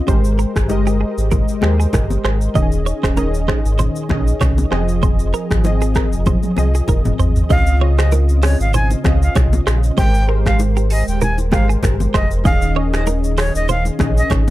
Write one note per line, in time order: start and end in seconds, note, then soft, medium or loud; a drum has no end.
0.00 0.10 C4 medium
0.00 0.10 D#5 medium
0.07 0.46 G#1 loud
0.07 0.56 G#3 medium
0.07 0.57 G4 medium
0.07 0.57 A#4 medium
0.07 0.20 C5 medium
0.07 0.57 C5 medium
0.07 kick loud
0.07 low conga medium
0.07 shaker medium
0.24 shaker medium
0.39 0.51 A#4 medium
0.39 shaker medium
0.56 1.04 G1 medium
0.56 finger snap medium
0.56 kick medium
0.56 cross-stick medium
0.56 shaker medium
0.69 1.41 G#3 medium
0.69 1.42 G4 medium
0.69 1.42 A#4 medium
0.69 1.42 D#5 medium
0.69 high bongo medium
0.69 shaker medium
0.87 0.97 G4 medium
0.87 shaker soft
1.01 1.13 G#4 medium
1.18 1.42 G#1 medium
1.18 shaker medium
1.31 1.43 A#4 medium
1.31 kick medium
1.31 high bongo medium
1.31 low bongo medium
1.31 low conga medium
1.31 shaker medium
1.48 shaker soft
1.61 1.87 D#2 loud
1.61 2.34 G#3 medium
1.61 2.34 G4 medium
1.61 1.74 G4 medium
1.61 2.35 A#4 medium
1.61 2.35 C5 medium
1.61 finger snap medium
1.61 cross-stick medium
1.61 low bongo medium
1.80 1.89 G#4 medium
1.80 shaker medium
1.93 2.18 G1 loud
1.93 2.05 A#4 medium
1.93 finger snap medium
1.93 kick medium
1.93 cross-stick medium
1.93 high bongo medium
1.93 low conga medium
1.93 shaker medium
2.10 low bongo medium
2.10 shaker medium
2.24 2.49 G#1 medium
2.24 2.36 C5 medium
2.24 finger snap medium
2.24 cross-stick medium
2.41 shaker medium
2.54 2.93 D#1 loud
2.54 3.04 D#3 medium
2.54 3.04 C#4 medium
2.54 2.63 G4 medium
2.54 2.67 D#5 medium
2.54 3.05 D#5 medium
2.54 kick loud
2.54 low conga medium
2.54 shaker medium
2.62 3.08 G#4 medium
2.72 shaker medium
2.86 2.98 C#5 medium
2.86 shaker medium
3.03 3.52 D#1 medium
3.03 3.13 C5 medium
3.03 finger snap medium
3.03 kick medium
3.03 cross-stick loud
3.03 shaker medium
3.16 3.89 D#3 medium
3.16 3.89 C#4 medium
3.16 3.89 G#4 medium
3.16 3.29 A#4 medium
3.16 3.90 D#5 medium
3.16 high bongo medium
3.16 shaker medium
3.34 shaker soft
3.48 3.60 C5 medium
3.48 finger snap medium
3.48 kick medium
3.48 cross-stick medium
3.65 3.90 G#1 medium
3.65 shaker medium
3.79 4.00 C5 medium
3.79 high bongo medium
3.79 low bongo medium
3.79 low conga medium
3.79 shaker medium
3.96 shaker soft
4.09 4.34 A#1 medium
4.09 4.71 D#3 medium
4.09 4.72 C#4 medium
4.09 4.71 G#4 medium
4.09 4.72 D#5 medium
4.09 finger snap medium
4.09 kick medium
4.09 cross-stick medium
4.09 low bongo medium
4.28 shaker medium
4.41 4.65 C2 medium
4.41 4.53 C#5 medium
4.41 finger snap medium
4.41 kick medium
4.41 cross-stick medium
4.41 high bongo medium
4.41 low conga medium
4.41 shaker medium
4.58 low bongo medium
4.58 shaker medium
4.71 5.34 F1 loud
4.71 5.47 F3 medium
4.71 5.47 C4 medium
4.71 5.48 G#4 medium
4.71 4.84 C5 medium
4.71 5.48 D#5 medium
4.71 finger snap medium
4.71 cross-stick medium
4.88 shaker medium
5.03 5.15 C5 loud
5.03 kick loud
5.03 low conga medium
5.03 shaker medium
5.19 shaker medium
5.34 5.46 A#4 medium
5.34 shaker medium
5.51 5.99 G#1 medium
5.51 finger snap medium
5.51 kick medium
5.51 cross-stick loud
5.51 shaker medium
5.64 6.36 F3 medium
5.64 6.37 C4 medium
5.64 6.37 G#4 medium
5.64 6.38 D#5 medium
5.64 high bongo medium
5.64 shaker medium
5.82 5.91 G#4 medium
5.82 shaker medium
5.95 6.08 A#4 medium
5.95 finger snap medium
5.95 kick medium
5.95 cross-stick medium
5.95 shaker medium
6.13 6.37 F1 medium
6.13 shaker medium
6.26 6.39 C5 medium
6.26 kick medium
6.26 high tom medium
6.26 high bongo medium
6.26 low bongo medium
6.26 low conga medium
6.26 shaker medium
6.43 high tom medium
6.43 shaker soft
6.56 6.82 C2 medium
6.56 7.29 F3 medium
6.56 7.29 C4 medium
6.56 6.69 G#4 medium
6.56 7.30 G#4 medium
6.56 7.30 D#5 medium
6.56 low bongo medium
6.56 shaker medium
6.75 6.84 G#4 medium
6.75 shaker medium
6.88 7.13 F1 medium
6.88 7.00 A#4 medium
6.88 kick medium
6.88 high bongo medium
6.88 low conga medium
6.88 shaker medium
7.05 mid tom medium
7.05 low bongo medium
7.05 shaker medium
7.19 7.44 G#1 medium
7.19 7.31 C5 medium
7.19 floor tom medium
7.19 shaker medium
7.36 floor tom medium
7.36 shaker soft
7.49 8.56 C#2 loud
7.49 7.74 C#3 medium
7.49 7.75 C4 medium
7.49 7.75 F4 medium
7.49 7.62 D#5 medium
7.49 7.75 D#5 medium
7.49 7.77 F5 loud
7.49 kick loud
7.49 low conga medium
7.49 shaker medium
7.67 shaker medium
7.80 8.76 C#3 medium
7.80 8.76 C4 medium
7.80 8.77 F4 medium
7.80 7.93 C#5 medium
7.80 8.77 D#5 medium
7.98 8.08 C5 medium
7.98 8.11 D#5 medium
7.98 finger snap medium
7.98 cross-stick loud
7.98 shaker medium
8.12 8.24 A#4 medium
8.12 high bongo medium
8.12 shaker medium
8.29 shaker medium
8.43 8.55 C5 medium
8.43 8.58 C#5 medium
8.43 finger snap medium
8.43 cross-stick loud
8.43 open hi-hat medium
8.60 8.95 G#1 medium
8.60 8.72 F5 medium
8.60 shaker medium
8.74 8.96 C5 medium
8.74 8.89 G#5 medium
8.74 high bongo medium
8.74 low conga medium
8.74 shaker medium
8.91 high bongo medium
8.91 shaker medium
9.04 9.29 C#2 medium
9.04 9.77 C4 medium
9.04 9.76 C#4 medium
9.04 9.77 F4 medium
9.04 9.78 D#5 medium
9.04 finger snap medium
9.04 kick medium
9.04 cross-stick medium
9.04 low bongo medium
9.04 shaker medium
9.22 9.34 F5 medium
9.22 shaker medium
9.35 9.60 C2 loud
9.35 9.48 C#5 medium
9.35 finger snap medium
9.35 kick medium
9.35 cross-stick medium
9.35 high bongo medium
9.35 low conga medium
9.35 shaker medium
9.53 low bongo medium
9.53 shaker medium
9.67 9.91 A#1 medium
9.67 9.79 C5 medium
9.67 finger snap medium
9.67 cross-stick loud
9.67 shaker medium
9.83 shaker medium
9.97 11.04 G#1 loud
9.97 10.22 G#3 medium
9.97 10.22 G4 medium
9.97 10.22 A#4 medium
9.97 10.10 C5 loud
9.97 10.23 C5 medium
9.97 10.24 G5 loud
9.97 kick loud
9.97 low conga medium
9.97 shaker medium
10.14 shaker medium
10.28 11.23 G#3 medium
10.28 11.23 G4 medium
10.28 10.40 A#4 medium
10.28 11.24 A#4 medium
10.28 11.24 C5 medium
10.46 10.58 F5 medium
10.46 finger snap medium
10.46 kick medium
10.46 cross-stick loud
10.46 shaker medium
10.59 high bongo medium
10.59 shaker medium
10.77 10.91 G4 medium
10.77 shaker medium
10.90 11.02 G#4 medium
10.90 11.06 D#5 medium
10.90 open hi-hat medium
11.08 11.54 D#1 medium
11.08 11.20 G5 medium
11.08 shaker medium
11.21 11.33 A#4 medium
11.21 11.37 G#5 medium
11.21 high bongo medium
11.21 low conga medium
11.21 shaker medium
11.38 high bongo medium
11.38 shaker medium
11.51 11.77 G#1 medium
11.51 12.24 G#3 medium
11.51 12.24 G4 medium
11.51 11.64 G4 medium
11.51 12.25 A#4 medium
11.51 12.25 C5 medium
11.51 11.67 F5 medium
11.51 finger snap medium
11.51 kick loud
11.51 cross-stick medium
11.51 low bongo medium
11.51 shaker medium
11.69 11.79 G#4 medium
11.69 shaker medium
11.83 12.08 G1 loud
11.83 11.95 A#4 medium
11.83 finger snap medium
11.83 kick medium
11.83 cross-stick medium
11.83 high bongo medium
11.83 low conga medium
11.83 shaker medium
12.00 low bongo medium
12.00 shaker medium
12.14 12.47 F1 medium
12.14 12.26 C5 medium
12.14 12.29 D#5 medium
12.14 finger snap medium
12.14 kick medium
12.14 cross-stick loud
12.14 shaker medium
12.31 shaker medium
12.44 13.51 D#1 loud
12.44 12.69 D#3 medium
12.44 12.69 C#4 medium
12.44 12.70 G#4 medium
12.44 12.57 D#5 medium
12.44 12.70 D#5 medium
12.44 12.72 F5 loud
12.44 kick loud
12.44 low conga medium
12.44 shaker medium
12.62 shaker medium
12.75 13.70 D#3 medium
12.75 13.71 C#4 medium
12.75 13.71 G#4 medium
12.75 12.93 C#5 medium
12.75 13.72 D#5 medium
12.93 13.03 C5 medium
12.93 13.06 D#5 medium
12.93 finger snap medium
12.93 cross-stick loud
12.93 shaker medium
13.07 13.19 A#4 medium
13.07 high bongo medium
13.07 shaker medium
13.24 shaker medium
13.38 13.50 C5 medium
13.38 13.53 C#5 medium
13.38 finger snap medium
13.38 cross-stick medium
13.38 open hi-hat medium
13.55 13.90 D#1 medium
13.55 13.67 D#5 medium
13.55 shaker medium
13.69 13.90 C5 medium
13.69 13.84 F5 medium
13.69 high bongo medium
13.69 low conga medium
13.69 shaker medium
13.85 high bongo medium
13.85 shaker medium
13.99 14.24 A#1 medium
13.99 14.50 D#3 medium
13.99 14.50 C#4 medium
13.99 14.50 G#4 medium
13.99 14.50 D#5 medium
13.99 finger snap medium
13.99 kick loud
13.99 cross-stick loud
13.99 low bongo medium
13.99 shaker medium
14.17 14.29 D#5 medium
14.17 shaker medium
14.30 14.50 G#1 loud
14.30 14.43 C#5 medium
14.30 finger snap medium
14.30 kick medium
14.30 cross-stick medium
14.30 high bongo medium
14.30 low conga medium
14.30 shaker medium